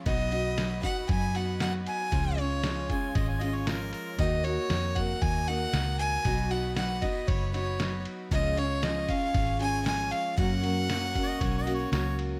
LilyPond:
<<
  \new Staff \with { instrumentName = "Fiddle" } { \time 4/4 \key b \lydian \tempo 4 = 116 dis''4. fis''8 gis''8 fis''8 fis''8 gis''8~ | gis''8 cis''4 r2 r8 | dis''8 cis''4 fis''8 gis''8 fis''4 gis''8~ | gis''8 fis''8 fis''8 dis''8 cis''8 cis''4 r8 |
dis''8 cis''8 dis''8 eis''4 gis''8 gis''8 eis''8 | fis''2. r4 | }
  \new Staff \with { instrumentName = "Violin section" } { \time 4/4 \key b \lydian << { b''1 | gis''1 | ais''1 | b''1 |
cis'''1 | cis'''1 | } \\ { <fis' dis''>1 | <eis' cis''>1 | <fis' dis''>1~ | <fis' dis''>1 |
<gis' eis''>1 | <ais' fis''>1 | } >> }
  \new Staff \with { instrumentName = "Harmonica" } { \time 4/4 \key b \lydian r1 | r4. gis''8 dis''16 gis''16 dis''16 cis''16 ais'8 ais'8 | r1 | r1 |
r1 | r4 \tuplet 3/2 { r4 dis''8 cis''8 dis''8 cis''8 } cis''8 r8 | }
  \new Staff \with { instrumentName = "Steel-string acoustic guitar" } { \time 4/4 \key b \lydian <b, fis b dis' fis'>8 <b dis' fis'>8 <fis b dis' fis'>8 <b dis' fis'>4 <b dis' fis'>8 <fis b dis' fis'>4 | <cis eis gis cis' eis'>8 <gis cis' eis'>8 <eis gis cis' eis'>8 <gis cis' eis'>4 <gis cis' eis'>8 <eis gis cis' eis'>4 | <dis ais dis' fis'>8 <ais dis' fis'>8 <dis ais dis' fis'>8 <ais dis' fis'>4 <ais dis' fis'>8 <dis ais dis' fis'>4 | <b, fis b dis' fis'>8 <b dis' fis'>8 <fis b dis' fis'>8 <b dis' fis'>4 <b dis' fis'>8 <fis b dis' fis'>4 |
<cis eis gis cis' eis'>8 <gis cis' eis'>8 <eis gis cis' eis'>8 <gis cis' eis'>4 <gis cis' eis'>8 <eis gis cis' eis'>4 | <fis, cis fis ais cis' fis'>8 <fis ais cis' fis'>8 <fis ais cis' fis'>8 <fis ais cis' fis'>4 <fis ais cis' fis'>8 <fis ais cis' fis'>4 | }
  \new Staff \with { instrumentName = "Fingered electric bass" } { \clef bass \time 4/4 \key b \lydian b,,2 fis,2 | cis,2 gis,,2 | dis,4 eis,4 dis,4 cis,4 | b,,2 fis,,2 |
cis,2 gis,,2 | fis,2 b,,4 cis,4 | }
  \new DrumStaff \with { instrumentName = "Drums" } \drummode { \time 4/4 <bd cymr>8 cymr8 <cymr sn>8 <bd cymr>8 <bd cymr>8 cymr8 <cymr sn>8 cymr8 | <bd cymr>8 cymr8 <cymr sn>8 <bd cymr>8 <bd cymr>8 cymr8 <cymr sn>8 cymr8 | <bd cymr>8 cymr8 <cymr sn>8 <bd cymr>8 <bd cymr>8 cymr8 <cymr sn>8 cymr8 | <bd cymr>8 cymr8 <cymr sn>8 <bd cymr>8 <bd cymr>8 cymr8 <cymr sn>8 cymr8 |
<bd cymr>8 cymr8 <cymr sn>8 <bd cymr>8 <bd cymr>8 cymr8 <cymr sn>8 cymr8 | <bd cymr>8 cymr8 <cymr sn>8 <bd cymr>8 <bd cymr>8 cymr8 <cymr sn>8 cymr8 | }
>>